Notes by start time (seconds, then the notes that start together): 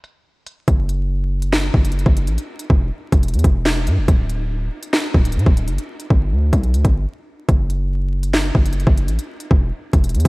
0.04 closed hi-hat
0.46 closed hi-hat
0.68 F#1, kick, closed hi-hat
0.89 closed hi-hat
1.42 closed hi-hat
1.53 snare, clap
1.74 F#1, kick
1.85 closed hi-hat
1.92 closed hi-hat
1.99 closed hi-hat
2.06 F#1, kick
2.17 closed hi-hat
2.27 A1, closed hi-hat
2.38 closed hi-hat
2.59 closed hi-hat
2.70 E1, kick
3.12 E1, kick, closed hi-hat
3.23 closed hi-hat
3.28 closed hi-hat
3.34 E2, closed hi-hat
3.39 closed hi-hat
3.44 E1, kick, closed hi-hat
3.66 snare, clap
3.87 G2, closed hi-hat
3.97 E1
4.08 D1, kick, closed hi-hat
4.29 closed hi-hat
4.83 closed hi-hat
4.93 snare, clap
5.14 D1, kick
5.25 closed hi-hat
5.32 A2, closed hi-hat
5.39 closed hi-hat
5.46 D1, kick
5.57 closed hi-hat
5.68 F#1, closed hi-hat
5.78 closed hi-hat
6.00 closed hi-hat
6.10 G1, kick
6.32 D2
6.53 B1, kick, closed hi-hat
6.63 closed hi-hat
6.74 D2, closed hi-hat
6.85 G1, kick, closed hi-hat
7.49 F#1, kick, closed hi-hat
7.70 closed hi-hat
8.23 closed hi-hat
8.34 snare, clap
8.55 F#1, kick
8.66 closed hi-hat
8.73 closed hi-hat
8.80 closed hi-hat
8.87 F#1, kick
8.98 closed hi-hat
9.08 A1, closed hi-hat
9.19 closed hi-hat
9.40 closed hi-hat
9.51 E1, kick
9.93 E1, kick, closed hi-hat
10.04 closed hi-hat
10.09 closed hi-hat
10.15 E2, closed hi-hat
10.20 closed hi-hat